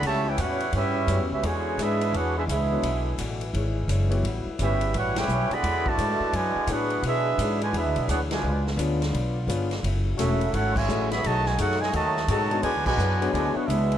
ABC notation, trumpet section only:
X:1
M:4/4
L:1/8
Q:"Swing" 1/4=171
K:E
V:1 name="Trumpet section"
[=Gcea] [EBc=g] [EBcf]2 [CGBe]3 [CGBe] | [B,FGc]2 [=DGBe]2 [DGBf] [DGBe] [DGBe]2- | [=DGBe]2 z6 | z2 [C=GBe]2 [EBcf] [EBc=g]2 [^G=dfb]- |
[G=dfb] [FBda]3 [FBdg]2 [=DGBf]2 | [=DGBe]3 [FB=dg] [DGBe]2 [DGBf] [=FBdg]- | [=FB=dg] z6 z | z2 [CFAe]2 [EAcf] [Fceg]2 [Gceb] |
[Fcda] [Fcdg] [DAcf] [Fcdg] [Fcda]2 [Fcda]2 | [FB=dg] [FBdg]3 [FBdg] [=DGBf] [DGBe]2 |]